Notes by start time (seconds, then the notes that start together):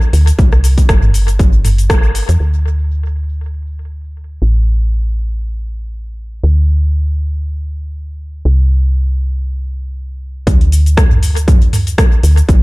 0.13 D2, open hi-hat, shaker
0.27 closed hi-hat, shaker
0.39 C2, kick, closed hi-hat, shaker
0.53 cross-stick
0.64 open hi-hat, shaker
0.78 kick, closed hi-hat, shaker
0.89 G1, kick, cross-stick, closed hi-hat, shaker
1.03 mid tom
1.14 open hi-hat, shaker
1.28 closed hi-hat, shaker
1.39 G1, kick, closed hi-hat, shaker
1.65 mid tom, open hi-hat, shaker
1.78 closed hi-hat, shaker
1.90 kick, cross-stick, closed hi-hat, shaker
2.15 open hi-hat, shaker
2.29 E2, closed hi-hat, shaker
2.40 D2
4.42 A1
6.44 D2
8.45 C2
10.47 D2, kick, closed hi-hat, shaker
10.61 closed hi-hat
10.72 open hi-hat, shaker
10.86 closed hi-hat, shaker
10.97 kick, cross-stick, closed hi-hat, shaker
11.11 mid tom
11.23 open hi-hat, shaker
11.36 closed hi-hat, shaker
11.48 kick, closed hi-hat, mid tom, shaker
11.62 closed hi-hat
11.73 mid tom, open hi-hat, shaker
11.87 closed hi-hat, shaker
11.98 kick, cross-stick, closed hi-hat, shaker
12.23 D2, open hi-hat, shaker
12.37 closed hi-hat, shaker
12.49 A1, kick, closed hi-hat, shaker